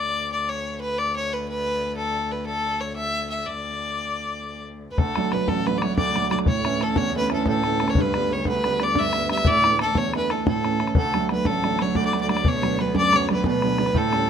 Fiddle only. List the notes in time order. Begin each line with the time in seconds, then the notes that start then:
Already playing: D5
0.32 D5
0.49 C#5
0.81 B4
0.98 D5
1.16 C#5
1.33 B4
1.49 B4
1.97 A4
2.32 B4
2.46 A4
2.80 C#5
2.96 E5
3.30 E5
3.46 D5
4.91 B4
4.98 A4
5.33 B4
5.48 A4
5.66 B4
5.78 D5
5.82 C#5
5.96 D5
6.31 D5
6.47 C#5
6.83 A4
6.98 C#5
7.17 B4
7.34 A4
7.48 A4
7.89 C#5
8.00 B4
8.32 C#5
8.49 B4
8.83 D5
8.99 E5
9.31 E5
9.47 D5
9.81 A4
9.97 C#5
10.17 B4
10.31 A4
10.48 A4
10.97 A4
11.32 B4
11.46 A4
11.82 C#5
11.96 D5
12.05 D5
12.21 D5
12.31 D5
12.48 C#5
12.81 B4
12.97 D5
13.16 C#5
13.33 B4
13.47 B4
13.97 A4